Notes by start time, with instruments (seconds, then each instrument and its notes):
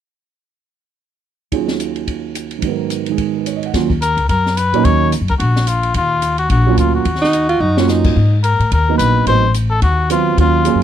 1.52 grand piano D#2 D#3 F#3 C#4 F4 G#4, kick, ride
1.68 snare
1.80 hi-hat pedal, ride
1.96 ride
2.08 kick, ride
2.35 hi-hat pedal, ride
2.51 ride
2.59 grand piano G#2 D#3, kick, ride
2.64 grand piano F#3 B3
2.70 grand piano A#4
2.90 hi-hat pedal, ride
3.06 grand piano D#3, ride
3.11 grand piano G#3 G#4
3.18 kick, ride
3.37 grand piano B4
3.46 grand piano C#5, hi-hat pedal, ride
3.57 grand piano D#5
3.63 grand piano F#5, ride
3.74 upright bass D#2, grand piano F#3 A#3 C#4 F4, kick, snare, ride
3.90 kick
4.02 muted trumpet A#4, hi-hat pedal, ride
4.17 upright bass C#2, ride
4.29 upright bass F#2, muted trumpet A#4, kick, ride
4.46 snare
4.57 muted trumpet B4, hi-hat pedal, ride
4.72 upright bass A#2, grand piano F#3 A#3 C#4 D#4, ride
4.85 upright bass D#2, muted trumpet C#5, kick, ride
5.12 hi-hat pedal, ride
5.21 upright bass F#2
5.28 upright bass C#2, muted trumpet A#4, ride
5.39 upright bass A#1, muted trumpet F#4, kick, ride
5.56 snare
5.67 muted trumpet F4, hi-hat pedal, ride
5.83 ride
5.94 upright bass D#2, muted trumpet F4, kick, ride
6.22 hi-hat pedal, ride
6.38 muted trumpet F#4, ride
6.50 upright bass A#1, muted trumpet F#4, kick, ride
6.67 grand piano F#3 A#3 C#4 F4
6.77 upright bass D2, muted trumpet F4, hi-hat pedal, ride
6.95 muted trumpet F#4
7.05 upright bass D#2, kick, ride
7.15 snare
7.22 alto saxophone D#4, snare
7.33 hi-hat pedal, ride
7.49 alto saxophone F4, ride
7.60 upright bass F#2, alto saxophone D#4
7.77 grand piano F#3 A#3 C#4 F4, alto saxophone C#4, snare
7.88 alto saxophone D#4, snare, hi-hat pedal
8.04 upright bass G2, kick, crash
8.16 upright bass G#2, kick
8.44 muted trumpet A#4, hi-hat pedal, ride
8.59 upright bass A2, ride
8.72 upright bass D#2, muted trumpet A#4, kick, ride
8.89 grand piano F#3 A#3 B3 D#4
8.98 upright bass A#1, muted trumpet B4, hi-hat pedal, ride
9.26 upright bass A1, grand piano F#3 B3 C4 D#4, muted trumpet C5, kick, ride
9.54 hi-hat pedal, ride
9.70 muted trumpet A4
9.82 upright bass D#2, muted trumpet F#4, kick, ride
10.10 grand piano F#3 B3 C4 F4, muted trumpet F4, hi-hat pedal, ride
10.37 upright bass D#2, grand piano F#3 A#3 C#4 F4, muted trumpet F4, kick, ride
10.65 grand piano F#3 A#3 C#4 G#4, hi-hat pedal, ride
10.75 upright bass F#2